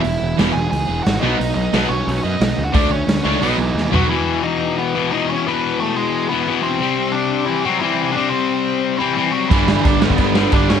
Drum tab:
CC |----------------|----------------|----------------|----------------|
HH |o---o---o---o---|o---o---o---o---|o---o---o-------|----------------|
SD |----o-------o---|----o-------o---|----o-------o---|----------------|
FT |----------------|----------------|--------------o-|----------------|
BD |----------------|----------------|o---------------|----------------|

CC |----------------|----------------|----------------|x---x---x---x---|
HH |----------------|----------------|----------------|----------------|
SD |----------------|----------------|----------------|--o---o---o---o-|
FT |----------------|----------------|----------------|----------------|
BD |----------------|----------------|----------------|o---o--oo---o---|